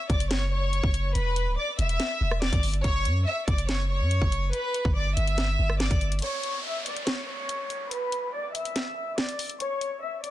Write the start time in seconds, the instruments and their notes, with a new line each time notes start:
0.10 808-style bass F#1, violin section D5 D6, kick, closed hi-hat
0.20 closed hi-hat
0.30 violin section C#5 C#6, snare, closed hi-hat
0.52 violin section C#5 C#6
0.73 closed hi-hat
0.83 808-style bass F#1, kick
0.94 closed hi-hat
1.15 808-style bass E1, violin section B4 B5, closed hi-hat
1.36 closed hi-hat
1.47 808-style bass D1
1.58 violin section D5 D6
1.79 808-style bass E1, violin section E5 E6, closed hi-hat
1.89 closed hi-hat
2.00 snare, closed hi-hat
2.21 808-style bass E1
2.31 cross-stick
2.42 violin section D5 D6, snare
2.53 808-style bass G1, kick, closed hi-hat
2.63 open hi-hat
2.74 closed hi-hat
2.84 808-style bass F#1, violin section C#5 C#6, kick, closed hi-hat
3.05 808-style bass F#2, closed hi-hat
3.27 violin section E5 E6
3.48 808-style bass F#1, violin section D5 D6, kick, closed hi-hat
3.58 closed hi-hat
3.69 violin section C#5 C#6, snare, closed hi-hat
3.90 violin section C#5 C#6
4.00 808-style bass F#2
4.11 closed hi-hat
4.22 808-style bass F#1, kick
4.32 closed hi-hat
4.53 violin section B4 B5, closed hi-hat
4.74 closed hi-hat
4.85 808-style bass G1, kick
4.96 violin section D5 D6
5.17 808-style bass G1, violin section E5 E6, closed hi-hat
5.27 closed hi-hat
5.38 snare, closed hi-hat
5.59 808-style bass G1
5.70 cross-stick
5.80 violin section D5 D6, snare
5.91 808-style bass G1, kick, closed hi-hat
6.01 closed hi-hat
6.12 closed hi-hat
6.19 closed hi-hat
6.22 violin section C#5 C#6, closed hi-hat, downlifter
6.26 closed hi-hat
6.44 closed hi-hat
6.65 violin section E5 E6
6.85 violin section D5 D6, closed hi-hat
6.97 closed hi-hat
7.06 violin section C#5 C#6, snare, closed hi-hat
7.28 violin section C#5 C#6
7.49 closed hi-hat
7.70 closed hi-hat
7.91 violin section B4 B5, closed hi-hat
8.12 closed hi-hat
8.34 violin section D5 D6
8.55 violin section E5 E6, closed hi-hat
8.65 closed hi-hat
8.76 snare, closed hi-hat
9.18 violin section D5 D6, snare
9.29 closed hi-hat
9.39 open hi-hat
9.50 closed hi-hat
9.60 violin section C#5 C#6, closed hi-hat
9.81 closed hi-hat
10.03 violin section E5 E6
10.23 violin section D5 D6, closed hi-hat